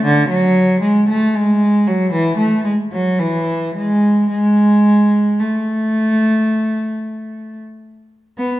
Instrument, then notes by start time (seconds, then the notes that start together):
cello
0.05 D3
0.29 F#3
0.81 G#3
1.09 A3
1.35 G#3
1.87 F#3
2.12 E3
2.37 A3
2.65 G#3
2.92 F#3
3.19 E3
3.75 G#3
4.31 G#3
5.40 A3
8.38 B3